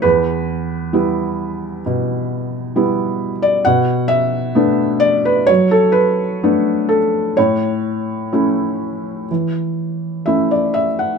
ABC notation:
X:1
M:4/4
L:1/16
Q:1/4=64
K:Bm
V:1 name="Felt piano"
B12- B3 d | f2 e4 d B c A B4 A2 | c12 e d e f |]
V:2 name="Felt piano"
E,,4 [G,B,E]4 B,,4 [G,B,E]4 | B,,4 [A,B,D]4 F,4 [A,B,D]4 | A,,4 [A,CE]4 E,4 [A,CE]4 |]